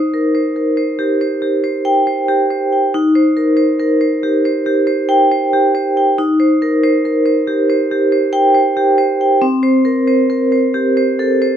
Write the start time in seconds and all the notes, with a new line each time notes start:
Already playing: D#4 C5
0.14 A#4
0.35 C5
0.56 A#4
0.77 C5
0.99 G4
1.21 C5
1.42 G4
1.64 C5
1.85 G5
2.07 C5
2.28 G4
2.50 C5
2.72 G5
2.94 D#4
3.15 C5
3.37 A#4
3.57 C5
3.80 A#4
4.01 C5
4.23 G4
4.45 C5
4.66 G4
4.87 C5
5.09 G5
5.32 C5
5.53 G4
5.75 C5
5.97 G5
6.18 D#4
6.40 C5
6.62 A#4
6.84 C5
7.05 A#4
7.26 C5
7.47 G4
7.70 C5
7.91 G4
8.12 C5
8.33 G5
8.55 C5
8.77 G4
8.98 C5
9.21 G5
9.42 C4
9.63 C5
9.85 A#4
10.07 C5
10.30 A#4
10.52 C5
10.74 G4
10.97 C5
11.19 A4
11.42 C5